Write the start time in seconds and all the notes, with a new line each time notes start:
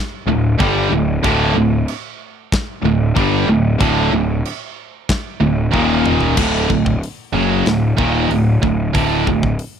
0.27 D1 D2 A2
0.59 G1 G2 D3 G3, kick, china
0.90 D1 D2 A2
1.23 D1 D2 A2 D3, kick, china
1.55 D1 D2 A2
1.88 china
2.52 kick, snare, china
2.83 D1 D2 A2
3.16 G1 G2 D3 G3, kick, china
3.47 D1 D2 A2
3.79 D1 D2 A2 D3, kick, china
4.12 D1 D2 A2
4.45 china
5.09 kick, snare, china
5.40 D1 D2 A2
5.73 D#1 D#2 A#2 D#3, kick
6.05 mid tom
6.21 floor tom
6.37 D1 D2 A2 D3, kick, crash
6.69 D1 D2 A2, kick
6.86 kick
7.03 open hi-hat
7.33 F#1 F#2 C#3 F#3
7.65 D1 D2 A2, snare, open hi-hat
7.97 D#1 D#2 A#2 D#3, kick
8.29 D1 D2 A2, open hi-hat
8.62 D1 D2 A2, kick
8.94 D1 D2 A2 D3, kick, open hi-hat
9.27 D1 D2 A2, kick
9.43 kick
9.59 open hi-hat